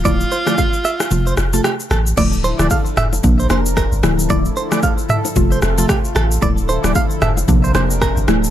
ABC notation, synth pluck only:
X:1
M:4/4
L:1/16
Q:"Swing 16ths" 1/4=113
K:Dm
V:1 name="Synth pluck" clef=bass
[D,F,A,E] z2 [D,F,A,E] z4 [C,F,A,F]3 [C,F,A,F] z4 | [D,F,A,E] z2 [D,F,A,E] z4 [C,F,B,D]2 [C,F,B,D] z3 [D,F,A,E]2 | [D,F,A,E] z2 [D,F,A,E] z4 [C,F,A,F]3 [C,F,A,F] z4 | [D,F,A,E] z2 [D,F,A,E] z4 [C,F,B,D]2 [C,F,B,D] z3 [D,F,A,E]2 |]